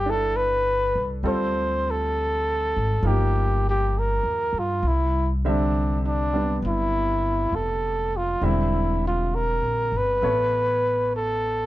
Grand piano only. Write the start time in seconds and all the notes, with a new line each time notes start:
Already playing: A3 G4 B4
0.06 D4 E4 A4
1.24 G3 C4 F4 A4
3.02 F3 A#3 D#4
3.07 G4
5.45 D3 G3 C4 E5
6.33 G3 B3 D4
8.42 D3 G3 C4 E5
10.22 B3 A4 C#5 E5